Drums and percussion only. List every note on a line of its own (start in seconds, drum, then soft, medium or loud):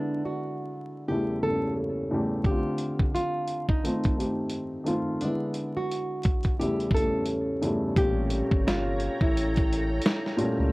2.44 kick loud
2.44 closed hi-hat medium
2.78 closed hi-hat medium
2.99 kick medium
3.15 closed hi-hat medium
3.48 closed hi-hat medium
3.69 kick medium
3.85 closed hi-hat medium
4.04 kick medium
4.04 closed hi-hat soft
4.20 closed hi-hat medium
4.50 closed hi-hat medium
4.86 closed hi-hat medium
5.21 closed hi-hat medium
5.54 closed hi-hat medium
5.92 closed hi-hat medium
6.23 kick loud
6.23 closed hi-hat medium
6.43 kick medium
6.43 closed hi-hat soft
6.61 closed hi-hat medium
6.80 closed hi-hat soft
6.91 kick medium
6.97 closed hi-hat medium
7.26 closed hi-hat medium
7.63 closed hi-hat medium
7.96 kick loud
7.96 closed hi-hat medium
8.30 closed hi-hat medium
8.51 kick medium
8.68 snare medium
8.68 closed hi-hat medium
9.00 closed hi-hat medium
9.21 kick medium
9.37 closed hi-hat medium
9.56 kick medium
9.56 closed hi-hat soft
9.73 closed hi-hat medium
10.01 closed hi-hat medium
10.06 snare loud
10.26 snare soft
10.38 closed hi-hat medium